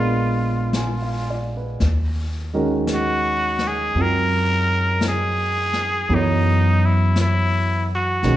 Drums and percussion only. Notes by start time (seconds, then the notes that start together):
0.73 brush sweep, snare, hi-hat pedal
1.80 brush sweep, snare
2.87 brush sweep, snare, hi-hat pedal
3.58 snare
3.95 brush sweep
5.01 brush sweep, snare, hi-hat pedal
5.73 snare
6.09 brush sweep
7.16 brush sweep, snare, hi-hat pedal
8.23 brush sweep, snare